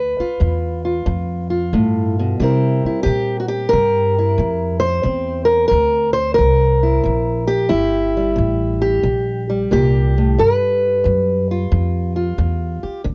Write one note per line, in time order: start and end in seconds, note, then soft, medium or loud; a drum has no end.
0.00 0.15 D2 medium
0.00 0.35 G2 medium
0.00 1.72 B4 loud
0.19 0.84 F4 soft
0.19 muted upright bass stroke soft
0.40 1.05 E2 medium
0.40 1.02 G2 medium
0.85 1.49 F4 soft
1.06 1.71 F2 medium
1.06 1.68 G2 medium
1.50 2.36 F4 soft
1.73 2.37 G2 medium
1.73 2.18 A2 medium
2.19 2.40 B2 medium
2.40 2.81 C3 medium
2.40 3.02 C3 medium
2.40 5.90 G3 medium
2.40 5.04 C4 medium
2.40 2.86 E4 soft
2.40 3.68 A#4 medium
2.85 3.03 E4 soft
2.85 muted upright bass stroke soft
3.03 3.70 A#2 medium
3.03 3.39 G4 loud
3.07 3.69 C3 medium
3.40 3.48 F#4 medium
3.48 4.16 G4 medium
3.69 4.79 A#4 loud
3.73 4.37 G2 medium
3.73 4.35 C3 medium
4.19 5.48 E4 soft
4.38 5.03 F2 medium
4.38 5.01 C3 medium
4.80 5.45 C5 medium
5.03 5.70 E2 medium
5.03 5.67 C3 medium
5.03 7.68 C4 soft
5.45 5.67 A#4 medium
5.68 6.36 D2 medium
5.68 6.13 A#4 loud
5.73 6.35 C3 medium
6.13 6.34 C5 medium
6.34 7.00 C3 medium
6.34 7.69 A#4 loud
6.39 7.03 C2 medium
6.83 7.47 E4 soft
7.04 7.70 A#1 medium
7.04 7.66 C3 medium
7.47 8.36 G4 medium
7.69 8.35 G1 medium
7.69 8.32 C3 medium
7.69 9.03 E4 medium
8.17 9.48 G3 soft
8.36 9.02 A1 medium
8.36 8.99 C3 medium
8.82 9.70 G4 medium
9.03 9.68 A#1 medium
9.03 9.66 C3 medium
9.50 13.03 G3 soft
9.71 10.36 C2 medium
9.71 10.16 A#2 medium
9.71 10.38 G4 loud
10.18 10.38 A2 medium
10.39 11.00 G2 medium
10.39 11.03 G2 medium
10.39 12.37 B4 medium
11.04 11.69 F#2 medium
11.04 11.66 G2 medium
11.51 12.15 F4 soft
11.72 12.35 F2 medium
11.72 12.33 G2 medium
12.16 13.00 F4 soft
12.38 12.79 E2 medium
12.38 12.99 G2 medium
12.83 13.01 G4 soft
12.83 muted upright bass stroke soft
13.04 13.15 D2 medium
13.04 13.15 D3 medium